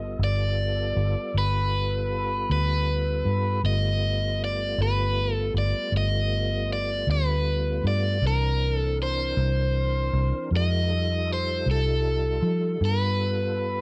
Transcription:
Already playing: fingered electric bass G1, tonewheel organ G3 B3 F4 A4, overdriven electric guitar D#5
0.19 fingered electric bass G1
0.24 overdriven electric guitar D5
0.96 fingered electric bass G1
1.34 fingered electric bass G1, overdriven electric guitar B4
2.50 fingered electric bass D2, overdriven electric guitar B4
3.25 fingered electric bass G2
3.63 fingered electric bass G1, tonewheel organ G3 A3 B3 F4, overdriven electric guitar D#5
4.44 overdriven electric guitar D5
4.78 fingered electric bass G1
4.82 overdriven electric guitar B4
5.34 overdriven electric guitar A4
5.54 fingered electric bass G1
5.58 overdriven electric guitar D5
5.92 fingered electric bass G1
5.97 overdriven electric guitar D#5
6.73 overdriven electric guitar D5
7.07 fingered electric bass D2
7.11 overdriven electric guitar B4
7.84 fingered electric bass G2, overdriven electric guitar D5
8.22 fingered electric bass C2, tonewheel organ E3 C4 D4 A#4
8.27 overdriven electric guitar A#4
8.75 overdriven electric guitar A4
9.03 overdriven electric guitar C5
9.37 fingered electric bass C2
10.13 fingered electric bass C2
10.51 fingered electric bass F2, tonewheel organ G#3 E4 F#4 A#4
10.57 overdriven electric guitar D#5
10.90 tonewheel organ G3 D#4 F4 A4
11.33 overdriven electric guitar C5
11.66 fingered electric bass C2
11.71 overdriven electric guitar A4
12.42 fingered electric bass F3
12.81 fingered electric bass G2, tonewheel organ G3 B3 F4 A4
12.85 overdriven electric guitar B4

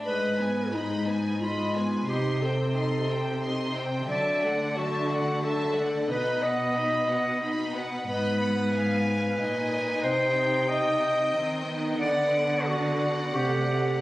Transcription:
0.05 cello section G#2, viola section G#3, clarinet B4, violin section D#5 B5
0.39 viola section B3, violin section B4 G#5
0.72 viola section G#3, clarinet D#4, violin section D#5 B5
1.06 viola section B3, violin section B4 G#5
1.40 viola section G#3, clarinet F4, violin section D#5 B5
1.74 viola section B3, violin section B4 G#5
2.07 cello section C3, viola section D#4, clarinet G4, violin section D#5 C6
2.41 viola section C4, clarinet A4, violin section C5 G5
2.76 viola section D#4, violin section D#5 C6
3.09 viola section C4, violin section C5 G5
3.43 viola section D#4, violin section D#5 C6
3.75 viola section C4, violin section C5 G5
4.08 cello section D3, viola section F#3, clarinet D5, violin section E5 A5
4.43 viola section A3, violin section D5 F#5
4.76 viola section F#3, clarinet F#4, violin section E5 A5
5.09 viola section A3, violin section D5 F#5
5.42 viola section F#3, clarinet A4, violin section E5 A5
5.75 viola section A3, violin section D5 F#5
6.09 cello section B2, viola section D#4, clarinet B4, violin section D#5 B5
6.42 viola section B3, violin section B4 F#5, clarinet D#5
6.75 viola section D#4, violin section D#5 B5
7.08 viola section B3, violin section B4 F#5
7.42 viola section D#4, violin section D#5 B5
7.75 viola section B3, violin section B4 F#5
8.08 cello section G#2, viola section B3, clarinet B4, violin section D#5 B5
8.41 violin section F#5
8.73 violin section F5 G#5
9.39 cello section A#2, viola section D#4, violin section D#5 G#5
10.03 cello section C3, clarinet C5, violin section D#5 G5
10.36 violin section G5
10.69 clarinet D#5, violin section G5
11.01 violin section D#5
11.35 cello section D#3, viola section C4
11.67 viola section B3
12.00 cello section D3, clarinet D5, violin section F#5
12.67 clarinet F#4, violin section D5
13.34 cello section C3, viola section A3, clarinet G4
13.70 viola section A3

